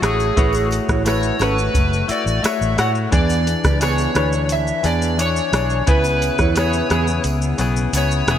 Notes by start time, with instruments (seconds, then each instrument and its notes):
0.02 fingered electric bass A1, clean electric guitar A3 E4 F#4 C#5, electric slide guitar G#4, cross-stick, closed hi-hat, tambourine, shaker
0.20 tambourine, shaker
0.36 fingered electric bass A1, clean electric guitar A3 E4 F#4 B4 C#5, kick, closed hi-hat, shaker
0.53 tambourine, shaker
0.71 closed hi-hat, tambourine, shaker
0.89 fingered electric bass A1, clean electric guitar E4 C#5, kick, cross-stick, shaker
1.05 clean electric guitar A3 E4 F#4 B4 C#5, electric slide guitar C#5, cross-stick, closed hi-hat, tambourine, shaker
1.23 shaker
1.39 fingered electric bass G#1, clean electric guitar A3 C#4 E4 F#4 A4 C#5, electric slide guitar B4, cross-stick, closed hi-hat, tambourine, shaker
1.58 shaker
1.74 fingered electric bass F#1, kick, closed hi-hat, tambourine, shaker
1.93 shaker
2.08 clean electric guitar A3 E4 F#4, electric slide guitar D5, muted fingered electric bass stroke, closed hi-hat, tambourine, shaker
2.26 fingered electric bass A1, tambourine, shaker
2.42 clean electric guitar A3 E4 F#4 C#5, electric slide guitar E5, cross-stick, closed hi-hat, tambourine, shaker
2.61 fingered electric bass A1, shaker
2.76 fingered electric bass A2, clean electric guitar A3 E4 F#4 C#5, electric slide guitar F#5, cross-stick, closed hi-hat, tambourine, shaker
2.95 shaker
3.11 fingered electric bass E2, clean electric guitar E3 B3 D4 G#4, electric slide guitar D5, kick, closed hi-hat, shaker
3.29 tambourine, shaker
3.47 closed hi-hat, tambourine, shaker
3.64 fingered electric bass C#2, clean electric guitar D4 B4, kick, cross-stick, tambourine, shaker
3.80 clean electric guitar E3 B3 D4 G#4 C#5, electric slide guitar C#5, cross-stick, closed hi-hat, tambourine, shaker
3.98 tambourine, shaker
4.14 fingered electric bass D2, clean electric guitar E3 D4 G#4 B4 C#5, cross-stick, closed hi-hat, tambourine, shaker
4.33 shaker
4.49 electric slide guitar E5, closed hi-hat, tambourine, shaker
4.67 shaker
4.83 fingered electric bass E2, clean electric guitar E3 B3 D4 G#4, electric slide guitar D5, closed hi-hat, tambourine, shaker
5.02 tambourine, shaker
5.17 clean electric guitar E3 D4 G#4 C#5, closed hi-hat, tambourine, shaker
5.21 electric slide guitar C#5
5.36 shaker
5.52 fingered electric bass B1, clean electric guitar E3 D4 G#4 C#5, cross-stick, closed hi-hat, tambourine, shaker
5.70 shaker
5.86 fingered electric bass C#2, clean electric guitar C#3 B3 E4 G#4 B4, kick, closed hi-hat, shaker
5.91 electric slide guitar B4
6.04 tambourine, shaker
6.22 closed hi-hat, tambourine, shaker
6.39 fingered electric bass E2, clean electric guitar E4 C#5, kick, cross-stick, shaker
6.55 clean electric guitar C#3 B3 E4 G#4 B4, cross-stick, closed hi-hat, tambourine, shaker
6.59 electric slide guitar C#5
6.73 tambourine, shaker
6.89 fingered electric bass E2, clean electric guitar C#3 B3 E4 G#4, cross-stick, closed hi-hat, tambourine, shaker
7.08 shaker
7.24 fingered electric bass C#2, closed hi-hat, tambourine, shaker
7.42 shaker
7.58 fingered electric bass B1, clean electric guitar C#3 B3 E4 G#4, closed hi-hat, tambourine, shaker
7.76 shaker
7.93 fingered electric bass C#2, clean electric guitar C#3 B3 E4 G#4, closed hi-hat, tambourine, shaker
7.97 electric slide guitar C#5
8.11 shaker
8.27 fingered electric bass E1, clean electric guitar C#3 B3 E4 G#4, cross-stick, closed hi-hat, tambourine, shaker